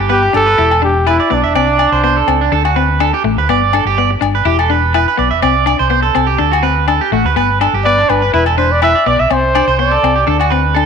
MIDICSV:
0, 0, Header, 1, 7, 480
1, 0, Start_track
1, 0, Key_signature, 1, "major"
1, 0, Tempo, 484653
1, 1532, Time_signature, 4, 2, 24, 8
1, 10752, End_track
2, 0, Start_track
2, 0, Title_t, "Trumpet"
2, 0, Program_c, 0, 56
2, 109, Note_on_c, 0, 67, 90
2, 324, Note_off_c, 0, 67, 0
2, 352, Note_on_c, 0, 69, 102
2, 789, Note_off_c, 0, 69, 0
2, 830, Note_on_c, 0, 67, 83
2, 1045, Note_off_c, 0, 67, 0
2, 1078, Note_on_c, 0, 64, 81
2, 1319, Note_on_c, 0, 62, 87
2, 1334, Note_off_c, 0, 64, 0
2, 2746, Note_off_c, 0, 62, 0
2, 7766, Note_on_c, 0, 74, 96
2, 8016, Note_on_c, 0, 71, 82
2, 8031, Note_off_c, 0, 74, 0
2, 8254, Note_off_c, 0, 71, 0
2, 8258, Note_on_c, 0, 71, 78
2, 8365, Note_off_c, 0, 71, 0
2, 8495, Note_on_c, 0, 72, 73
2, 8631, Note_on_c, 0, 74, 80
2, 8646, Note_off_c, 0, 72, 0
2, 8737, Note_off_c, 0, 74, 0
2, 8746, Note_on_c, 0, 76, 102
2, 8985, Note_on_c, 0, 74, 91
2, 9000, Note_off_c, 0, 76, 0
2, 9111, Note_on_c, 0, 76, 86
2, 9126, Note_off_c, 0, 74, 0
2, 9231, Note_on_c, 0, 72, 87
2, 9246, Note_off_c, 0, 76, 0
2, 9702, Note_off_c, 0, 72, 0
2, 9712, Note_on_c, 0, 74, 81
2, 10383, Note_off_c, 0, 74, 0
2, 10752, End_track
3, 0, Start_track
3, 0, Title_t, "Clean electric guitar"
3, 0, Program_c, 1, 27
3, 92, Note_on_c, 1, 71, 83
3, 213, Note_off_c, 1, 71, 0
3, 226, Note_on_c, 1, 67, 63
3, 451, Note_off_c, 1, 67, 0
3, 459, Note_on_c, 1, 71, 65
3, 566, Note_off_c, 1, 71, 0
3, 572, Note_on_c, 1, 67, 72
3, 693, Note_off_c, 1, 67, 0
3, 705, Note_on_c, 1, 69, 69
3, 809, Note_off_c, 1, 69, 0
3, 1061, Note_on_c, 1, 71, 74
3, 1178, Note_off_c, 1, 71, 0
3, 1186, Note_on_c, 1, 74, 70
3, 1283, Note_off_c, 1, 74, 0
3, 1295, Note_on_c, 1, 74, 68
3, 1415, Note_off_c, 1, 74, 0
3, 1423, Note_on_c, 1, 76, 56
3, 1528, Note_off_c, 1, 76, 0
3, 1539, Note_on_c, 1, 74, 76
3, 1764, Note_off_c, 1, 74, 0
3, 1777, Note_on_c, 1, 74, 69
3, 1897, Note_off_c, 1, 74, 0
3, 1906, Note_on_c, 1, 72, 68
3, 2006, Note_off_c, 1, 72, 0
3, 2018, Note_on_c, 1, 72, 75
3, 2137, Note_off_c, 1, 72, 0
3, 2147, Note_on_c, 1, 69, 71
3, 2372, Note_off_c, 1, 69, 0
3, 2388, Note_on_c, 1, 62, 69
3, 2491, Note_off_c, 1, 62, 0
3, 2498, Note_on_c, 1, 69, 80
3, 2617, Note_off_c, 1, 69, 0
3, 2622, Note_on_c, 1, 66, 62
3, 2728, Note_off_c, 1, 66, 0
3, 2733, Note_on_c, 1, 71, 61
3, 2961, Note_off_c, 1, 71, 0
3, 2974, Note_on_c, 1, 69, 79
3, 3095, Note_off_c, 1, 69, 0
3, 3108, Note_on_c, 1, 67, 68
3, 3212, Note_off_c, 1, 67, 0
3, 3351, Note_on_c, 1, 71, 58
3, 3453, Note_off_c, 1, 71, 0
3, 3467, Note_on_c, 1, 74, 78
3, 3689, Note_off_c, 1, 74, 0
3, 3706, Note_on_c, 1, 69, 69
3, 3821, Note_off_c, 1, 69, 0
3, 3829, Note_on_c, 1, 67, 74
3, 3932, Note_off_c, 1, 67, 0
3, 3941, Note_on_c, 1, 74, 83
3, 4058, Note_off_c, 1, 74, 0
3, 4307, Note_on_c, 1, 71, 63
3, 4411, Note_off_c, 1, 71, 0
3, 4418, Note_on_c, 1, 67, 86
3, 4537, Note_off_c, 1, 67, 0
3, 4550, Note_on_c, 1, 69, 63
3, 4652, Note_off_c, 1, 69, 0
3, 4664, Note_on_c, 1, 71, 61
3, 4887, Note_off_c, 1, 71, 0
3, 4903, Note_on_c, 1, 71, 82
3, 5020, Note_off_c, 1, 71, 0
3, 5032, Note_on_c, 1, 71, 72
3, 5133, Note_off_c, 1, 71, 0
3, 5137, Note_on_c, 1, 74, 63
3, 5252, Note_off_c, 1, 74, 0
3, 5256, Note_on_c, 1, 76, 57
3, 5365, Note_off_c, 1, 76, 0
3, 5372, Note_on_c, 1, 74, 83
3, 5597, Note_off_c, 1, 74, 0
3, 5609, Note_on_c, 1, 74, 68
3, 5732, Note_off_c, 1, 74, 0
3, 5737, Note_on_c, 1, 72, 72
3, 5830, Note_off_c, 1, 72, 0
3, 5841, Note_on_c, 1, 72, 79
3, 5963, Note_off_c, 1, 72, 0
3, 5967, Note_on_c, 1, 69, 74
3, 6201, Note_off_c, 1, 69, 0
3, 6207, Note_on_c, 1, 67, 67
3, 6320, Note_off_c, 1, 67, 0
3, 6325, Note_on_c, 1, 69, 70
3, 6449, Note_off_c, 1, 69, 0
3, 6452, Note_on_c, 1, 66, 62
3, 6563, Note_off_c, 1, 66, 0
3, 6567, Note_on_c, 1, 71, 70
3, 6797, Note_off_c, 1, 71, 0
3, 6816, Note_on_c, 1, 69, 72
3, 6935, Note_off_c, 1, 69, 0
3, 6943, Note_on_c, 1, 67, 62
3, 7048, Note_off_c, 1, 67, 0
3, 7061, Note_on_c, 1, 66, 69
3, 7178, Note_off_c, 1, 66, 0
3, 7187, Note_on_c, 1, 71, 61
3, 7286, Note_off_c, 1, 71, 0
3, 7298, Note_on_c, 1, 71, 82
3, 7523, Note_off_c, 1, 71, 0
3, 7535, Note_on_c, 1, 69, 71
3, 7654, Note_off_c, 1, 69, 0
3, 7670, Note_on_c, 1, 67, 65
3, 7771, Note_off_c, 1, 67, 0
3, 7779, Note_on_c, 1, 71, 73
3, 7897, Note_off_c, 1, 71, 0
3, 7906, Note_on_c, 1, 62, 69
3, 8131, Note_off_c, 1, 62, 0
3, 8142, Note_on_c, 1, 71, 64
3, 8247, Note_off_c, 1, 71, 0
3, 8256, Note_on_c, 1, 64, 81
3, 8375, Note_off_c, 1, 64, 0
3, 8385, Note_on_c, 1, 69, 65
3, 8489, Note_off_c, 1, 69, 0
3, 8497, Note_on_c, 1, 71, 67
3, 8722, Note_off_c, 1, 71, 0
3, 8739, Note_on_c, 1, 71, 82
3, 8857, Note_off_c, 1, 71, 0
3, 8865, Note_on_c, 1, 74, 69
3, 8964, Note_off_c, 1, 74, 0
3, 8976, Note_on_c, 1, 74, 63
3, 9095, Note_off_c, 1, 74, 0
3, 9104, Note_on_c, 1, 76, 60
3, 9208, Note_off_c, 1, 76, 0
3, 9456, Note_on_c, 1, 74, 69
3, 9575, Note_off_c, 1, 74, 0
3, 9583, Note_on_c, 1, 72, 76
3, 9682, Note_off_c, 1, 72, 0
3, 9694, Note_on_c, 1, 72, 74
3, 9814, Note_off_c, 1, 72, 0
3, 9819, Note_on_c, 1, 69, 74
3, 10048, Note_off_c, 1, 69, 0
3, 10059, Note_on_c, 1, 67, 62
3, 10165, Note_off_c, 1, 67, 0
3, 10169, Note_on_c, 1, 69, 76
3, 10292, Note_off_c, 1, 69, 0
3, 10296, Note_on_c, 1, 66, 65
3, 10404, Note_on_c, 1, 71, 69
3, 10405, Note_off_c, 1, 66, 0
3, 10636, Note_off_c, 1, 71, 0
3, 10642, Note_on_c, 1, 69, 81
3, 10752, Note_off_c, 1, 69, 0
3, 10752, End_track
4, 0, Start_track
4, 0, Title_t, "Clean electric guitar"
4, 0, Program_c, 2, 27
4, 97, Note_on_c, 2, 59, 64
4, 221, Note_off_c, 2, 59, 0
4, 329, Note_on_c, 2, 62, 68
4, 455, Note_off_c, 2, 62, 0
4, 577, Note_on_c, 2, 64, 76
4, 702, Note_off_c, 2, 64, 0
4, 811, Note_on_c, 2, 62, 73
4, 937, Note_off_c, 2, 62, 0
4, 1056, Note_on_c, 2, 64, 79
4, 1181, Note_off_c, 2, 64, 0
4, 1289, Note_on_c, 2, 59, 72
4, 1416, Note_off_c, 2, 59, 0
4, 1541, Note_on_c, 2, 60, 82
4, 1664, Note_off_c, 2, 60, 0
4, 2016, Note_on_c, 2, 59, 64
4, 2141, Note_off_c, 2, 59, 0
4, 2256, Note_on_c, 2, 60, 65
4, 2381, Note_off_c, 2, 60, 0
4, 2495, Note_on_c, 2, 62, 72
4, 2620, Note_off_c, 2, 62, 0
4, 2735, Note_on_c, 2, 60, 70
4, 2860, Note_off_c, 2, 60, 0
4, 2976, Note_on_c, 2, 62, 79
4, 3101, Note_off_c, 2, 62, 0
4, 3212, Note_on_c, 2, 57, 72
4, 3338, Note_off_c, 2, 57, 0
4, 3458, Note_on_c, 2, 59, 85
4, 3583, Note_off_c, 2, 59, 0
4, 3699, Note_on_c, 2, 62, 68
4, 3823, Note_off_c, 2, 62, 0
4, 3944, Note_on_c, 2, 59, 59
4, 4067, Note_off_c, 2, 59, 0
4, 4169, Note_on_c, 2, 62, 68
4, 4296, Note_off_c, 2, 62, 0
4, 4411, Note_on_c, 2, 64, 79
4, 4537, Note_off_c, 2, 64, 0
4, 4652, Note_on_c, 2, 62, 76
4, 4778, Note_off_c, 2, 62, 0
4, 4897, Note_on_c, 2, 64, 83
4, 5022, Note_off_c, 2, 64, 0
4, 5126, Note_on_c, 2, 59, 74
4, 5253, Note_off_c, 2, 59, 0
4, 5373, Note_on_c, 2, 60, 82
4, 5498, Note_off_c, 2, 60, 0
4, 5605, Note_on_c, 2, 62, 79
4, 5733, Note_off_c, 2, 62, 0
4, 5847, Note_on_c, 2, 59, 68
4, 5974, Note_off_c, 2, 59, 0
4, 6089, Note_on_c, 2, 60, 77
4, 6215, Note_off_c, 2, 60, 0
4, 6323, Note_on_c, 2, 62, 77
4, 6451, Note_off_c, 2, 62, 0
4, 6563, Note_on_c, 2, 60, 69
4, 6691, Note_off_c, 2, 60, 0
4, 6810, Note_on_c, 2, 62, 76
4, 6936, Note_off_c, 2, 62, 0
4, 7052, Note_on_c, 2, 57, 73
4, 7177, Note_off_c, 2, 57, 0
4, 7291, Note_on_c, 2, 59, 84
4, 7417, Note_off_c, 2, 59, 0
4, 7537, Note_on_c, 2, 62, 71
4, 7661, Note_off_c, 2, 62, 0
4, 7783, Note_on_c, 2, 59, 69
4, 7906, Note_off_c, 2, 59, 0
4, 8023, Note_on_c, 2, 62, 69
4, 8146, Note_off_c, 2, 62, 0
4, 8256, Note_on_c, 2, 64, 80
4, 8381, Note_off_c, 2, 64, 0
4, 8495, Note_on_c, 2, 62, 71
4, 8620, Note_off_c, 2, 62, 0
4, 8740, Note_on_c, 2, 64, 80
4, 8864, Note_off_c, 2, 64, 0
4, 8977, Note_on_c, 2, 59, 78
4, 9101, Note_off_c, 2, 59, 0
4, 9218, Note_on_c, 2, 60, 77
4, 9342, Note_off_c, 2, 60, 0
4, 9462, Note_on_c, 2, 62, 78
4, 9585, Note_off_c, 2, 62, 0
4, 9697, Note_on_c, 2, 59, 64
4, 9821, Note_off_c, 2, 59, 0
4, 9943, Note_on_c, 2, 60, 74
4, 10066, Note_off_c, 2, 60, 0
4, 10177, Note_on_c, 2, 62, 81
4, 10301, Note_off_c, 2, 62, 0
4, 10415, Note_on_c, 2, 60, 70
4, 10540, Note_off_c, 2, 60, 0
4, 10660, Note_on_c, 2, 62, 82
4, 10752, Note_off_c, 2, 62, 0
4, 10752, End_track
5, 0, Start_track
5, 0, Title_t, "Fingered electric bass"
5, 0, Program_c, 3, 33
5, 0, Note_on_c, 3, 31, 78
5, 268, Note_off_c, 3, 31, 0
5, 338, Note_on_c, 3, 31, 79
5, 530, Note_off_c, 3, 31, 0
5, 580, Note_on_c, 3, 28, 88
5, 1162, Note_off_c, 3, 28, 0
5, 1300, Note_on_c, 3, 35, 82
5, 1430, Note_off_c, 3, 35, 0
5, 1430, Note_on_c, 3, 28, 76
5, 1517, Note_off_c, 3, 28, 0
5, 1536, Note_on_c, 3, 36, 76
5, 1833, Note_off_c, 3, 36, 0
5, 1903, Note_on_c, 3, 36, 81
5, 2188, Note_off_c, 3, 36, 0
5, 2256, Note_on_c, 3, 37, 75
5, 2450, Note_off_c, 3, 37, 0
5, 2492, Note_on_c, 3, 38, 94
5, 3078, Note_off_c, 3, 38, 0
5, 3207, Note_on_c, 3, 33, 81
5, 3341, Note_off_c, 3, 33, 0
5, 3341, Note_on_c, 3, 38, 79
5, 3432, Note_off_c, 3, 38, 0
5, 3454, Note_on_c, 3, 31, 85
5, 3753, Note_off_c, 3, 31, 0
5, 3814, Note_on_c, 3, 31, 77
5, 4103, Note_off_c, 3, 31, 0
5, 4174, Note_on_c, 3, 31, 77
5, 4369, Note_off_c, 3, 31, 0
5, 4409, Note_on_c, 3, 28, 96
5, 4996, Note_off_c, 3, 28, 0
5, 5135, Note_on_c, 3, 35, 81
5, 5264, Note_off_c, 3, 35, 0
5, 5264, Note_on_c, 3, 28, 74
5, 5354, Note_off_c, 3, 28, 0
5, 5380, Note_on_c, 3, 36, 87
5, 5675, Note_off_c, 3, 36, 0
5, 5745, Note_on_c, 3, 36, 79
5, 6029, Note_off_c, 3, 36, 0
5, 6099, Note_on_c, 3, 36, 82
5, 6291, Note_off_c, 3, 36, 0
5, 6331, Note_on_c, 3, 38, 89
5, 6916, Note_off_c, 3, 38, 0
5, 7049, Note_on_c, 3, 33, 79
5, 7179, Note_off_c, 3, 33, 0
5, 7179, Note_on_c, 3, 38, 74
5, 7271, Note_off_c, 3, 38, 0
5, 7292, Note_on_c, 3, 31, 79
5, 7591, Note_off_c, 3, 31, 0
5, 7658, Note_on_c, 3, 31, 85
5, 7944, Note_off_c, 3, 31, 0
5, 8018, Note_on_c, 3, 31, 83
5, 8210, Note_off_c, 3, 31, 0
5, 8257, Note_on_c, 3, 28, 94
5, 8840, Note_off_c, 3, 28, 0
5, 8977, Note_on_c, 3, 35, 78
5, 9079, Note_off_c, 3, 35, 0
5, 9109, Note_on_c, 3, 35, 80
5, 9196, Note_off_c, 3, 35, 0
5, 9216, Note_on_c, 3, 36, 75
5, 9513, Note_off_c, 3, 36, 0
5, 9581, Note_on_c, 3, 36, 80
5, 9867, Note_off_c, 3, 36, 0
5, 9935, Note_on_c, 3, 36, 85
5, 10129, Note_off_c, 3, 36, 0
5, 10174, Note_on_c, 3, 38, 99
5, 10752, Note_off_c, 3, 38, 0
5, 10752, End_track
6, 0, Start_track
6, 0, Title_t, "Muted clean electric guitar strokes"
6, 820, Note_on_c, 9, 29, 68
6, 919, Note_off_c, 9, 29, 0
6, 1776, Note_on_c, 9, 29, 76
6, 1876, Note_off_c, 9, 29, 0
6, 3217, Note_on_c, 9, 29, 68
6, 3316, Note_off_c, 9, 29, 0
6, 4065, Note_on_c, 9, 29, 71
6, 4164, Note_off_c, 9, 29, 0
6, 9217, Note_on_c, 9, 29, 81
6, 9316, Note_off_c, 9, 29, 0
6, 10752, End_track
7, 0, Start_track
7, 0, Title_t, "Drums"
7, 339, Note_on_c, 9, 68, 58
7, 438, Note_off_c, 9, 68, 0
7, 708, Note_on_c, 9, 68, 59
7, 807, Note_off_c, 9, 68, 0
7, 1059, Note_on_c, 9, 68, 61
7, 1158, Note_off_c, 9, 68, 0
7, 1540, Note_on_c, 9, 68, 59
7, 1639, Note_off_c, 9, 68, 0
7, 1773, Note_on_c, 9, 68, 63
7, 1872, Note_off_c, 9, 68, 0
7, 2257, Note_on_c, 9, 68, 61
7, 2356, Note_off_c, 9, 68, 0
7, 2625, Note_on_c, 9, 68, 55
7, 2724, Note_off_c, 9, 68, 0
7, 2974, Note_on_c, 9, 68, 61
7, 3073, Note_off_c, 9, 68, 0
7, 3457, Note_on_c, 9, 68, 52
7, 3556, Note_off_c, 9, 68, 0
7, 3696, Note_on_c, 9, 68, 69
7, 3795, Note_off_c, 9, 68, 0
7, 4180, Note_on_c, 9, 68, 63
7, 4279, Note_off_c, 9, 68, 0
7, 4545, Note_on_c, 9, 68, 63
7, 4644, Note_off_c, 9, 68, 0
7, 4897, Note_on_c, 9, 68, 68
7, 4996, Note_off_c, 9, 68, 0
7, 5374, Note_on_c, 9, 68, 57
7, 5473, Note_off_c, 9, 68, 0
7, 5616, Note_on_c, 9, 68, 72
7, 5715, Note_off_c, 9, 68, 0
7, 6095, Note_on_c, 9, 68, 63
7, 6194, Note_off_c, 9, 68, 0
7, 6469, Note_on_c, 9, 68, 64
7, 6568, Note_off_c, 9, 68, 0
7, 6812, Note_on_c, 9, 68, 64
7, 6911, Note_off_c, 9, 68, 0
7, 7295, Note_on_c, 9, 68, 53
7, 7394, Note_off_c, 9, 68, 0
7, 7539, Note_on_c, 9, 68, 70
7, 7638, Note_off_c, 9, 68, 0
7, 8019, Note_on_c, 9, 68, 64
7, 8118, Note_off_c, 9, 68, 0
7, 8380, Note_on_c, 9, 68, 58
7, 8479, Note_off_c, 9, 68, 0
7, 8734, Note_on_c, 9, 68, 63
7, 8833, Note_off_c, 9, 68, 0
7, 9215, Note_on_c, 9, 68, 62
7, 9314, Note_off_c, 9, 68, 0
7, 9461, Note_on_c, 9, 68, 72
7, 9560, Note_off_c, 9, 68, 0
7, 9944, Note_on_c, 9, 68, 58
7, 10043, Note_off_c, 9, 68, 0
7, 10307, Note_on_c, 9, 68, 64
7, 10406, Note_off_c, 9, 68, 0
7, 10661, Note_on_c, 9, 68, 57
7, 10752, Note_off_c, 9, 68, 0
7, 10752, End_track
0, 0, End_of_file